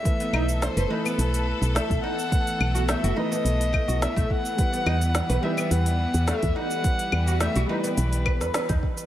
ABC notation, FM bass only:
X:1
M:4/4
L:1/16
Q:1/4=106
K:none
V:1 name="FM bass" clef=bass
z2 B,,,2 z ^F,,, z2 B,,,2 z B,,, z B,,, z2 | z2 B,,,2 z ^F,,, z2 B,,,2 z B,,, z B,,, z2 | z2 E,,2 z B,,, z2 E,,2 z E,, z E,, z2 | z2 E,,2 z B,,, z2 B,,,3 E,, z E,, z2 |]